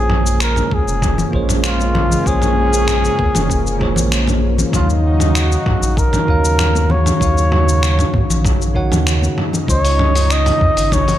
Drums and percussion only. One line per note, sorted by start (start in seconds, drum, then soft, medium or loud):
0.10 mid tom medium
0.27 shaker medium
0.40 finger snap loud
0.40 shaker medium
0.56 mid tom medium
0.56 shaker soft
0.71 kick loud
0.88 shaker medium
1.02 kick loud
1.02 mid tom medium
1.02 shaker medium
1.18 low conga medium
1.18 shaker soft
1.33 kick medium
1.49 mid tom medium
1.49 shaker medium
1.64 finger snap loud
1.64 shaker soft
1.80 high conga medium
1.80 shaker soft
1.95 mid tom medium
1.95 low conga medium
2.11 low conga medium
2.11 shaker medium
2.26 kick loud
2.26 shaker medium
2.42 mid tom medium
2.42 shaker soft
2.73 shaker medium
2.88 finger snap loud
2.88 mid tom medium
2.88 shaker soft
3.05 shaker soft
3.19 kick loud
3.19 high conga medium
3.35 mid tom medium
3.35 low conga medium
3.35 shaker medium
3.50 kick loud
3.50 shaker soft
3.67 shaker soft
3.81 kick medium
3.81 mid tom medium
3.96 low conga medium
3.96 shaker medium
4.12 finger snap loud
4.12 shaker medium
4.27 mid tom medium
4.27 high conga medium
4.27 shaker soft
4.58 low conga medium
4.58 shaker medium
4.73 kick loud
4.73 mid tom medium
4.73 shaker medium
4.90 shaker soft
5.20 mid tom medium
5.20 shaker medium
5.35 finger snap loud
5.35 shaker medium
5.52 shaker soft
5.66 kick loud
5.66 mid tom medium
5.83 shaker medium
5.97 kick loud
5.97 shaker medium
6.13 mid tom medium
6.13 low conga medium
6.13 shaker soft
6.28 kick medium
6.45 shaker medium
6.59 finger snap medium
6.59 mid tom medium
6.59 shaker medium
6.75 high conga medium
6.75 shaker soft
6.90 low conga medium
7.06 mid tom medium
7.06 low conga medium
7.06 shaker medium
7.21 kick loud
7.21 shaker medium
7.38 shaker soft
7.52 mid tom medium
7.69 shaker medium
7.83 finger snap medium
7.83 shaker medium
7.99 mid tom medium
7.99 shaker soft
8.14 kick loud
8.14 high conga medium
8.30 low conga medium
8.30 shaker medium
8.45 kick loud
8.45 mid tom medium
8.45 shaker medium
8.62 shaker soft
8.76 kick medium
8.92 mid tom medium
8.92 low conga medium
8.92 shaker medium
9.07 finger snap medium
9.07 shaker medium
9.22 high conga medium
9.22 shaker soft
9.38 mid tom medium
9.53 low conga medium
9.53 shaker medium
9.68 kick loud
9.68 shaker medium
9.85 open hi-hat soft
9.85 shaker soft
9.99 mid tom medium
10.15 open hi-hat soft
10.15 shaker medium
10.30 finger snap medium
10.30 shaker medium
10.46 mid tom medium
10.46 open hi-hat soft
10.46 shaker soft
10.61 kick loud
10.77 open hi-hat soft
10.77 shaker medium
10.92 kick loud
10.92 mid tom medium
10.92 shaker medium
11.08 open hi-hat soft
11.08 low conga medium
11.08 shaker soft